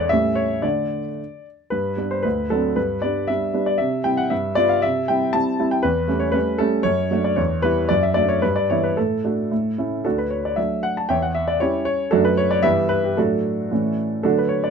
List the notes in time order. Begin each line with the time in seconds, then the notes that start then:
Already playing: E2 G#3 B3 D4 B4 C#5 D5
0.09 A2 G3 A3 C#4 E5
0.35 C#5
0.62 D3 A3 D4 D5
1.70 G2 B4
1.97 G3 B3 D4
2.11 C5
2.23 D2 B4
2.50 F#3 C4 D4 A4
2.76 G2 B4
3.02 G3 B3 D4 D5
3.27 G3 B3 D4 E5
3.53 G3 B3 D4
3.66 D5
3.78 C3 E5
4.04 G3 C4 E4 G5
4.17 F#5
4.30 G2 E5
4.55 G3 B3 F4 D5
4.69 F5
4.82 C3 E5
5.08 G3 C4 E4 G5
5.33 G3 C4 E4 A5
5.59 G3 C4 E4
5.71 G5
5.83 E2 B4
6.08 G3 A3 C#4
6.20 C#5
6.32 G3 A3 C#4 B4
6.58 G3 A3 C#4 A4
6.83 F#2 C#5
7.11 F#3 A3 D4
7.24 D5
7.36 E2 C#5
7.62 G3 B3 E4 B4
7.89 F#2 D5
8.03 E5
8.14 F#3 A3 D4 D5
8.28 C#5
8.42 G2 B4
8.56 D5
8.70 E3 B3 E4 C#5
8.83 B4
8.97 A2 A4
9.24 A3 D4 F#4
9.51 A2
9.78 A3 C#4 E4
10.04 D2 D4 F#4 A4
10.18 B4
10.30 C#5
10.45 D5
10.56 F#3 A3 D4 E5
10.83 F#5
10.97 A5
11.09 E2 C#5 E5 G5
11.22 F#5
11.35 E5
11.48 D5
11.60 G3 C#4 E4 G4 C#5
11.85 C#5
12.11 F#2 F#3 A3 D4 F#4 A4
12.25 B4
12.37 C#5
12.51 D5
12.63 G2 E3 B3 E4 G4 B4 E5
12.89 B4
13.04 G4
13.17 A2 F#3 A3 D4 F#4 A4
13.71 A2 E3 A3 C#4
14.23 D3 F#3 A3 D4 F#4 A4
14.38 B4
14.49 C#5
14.64 D5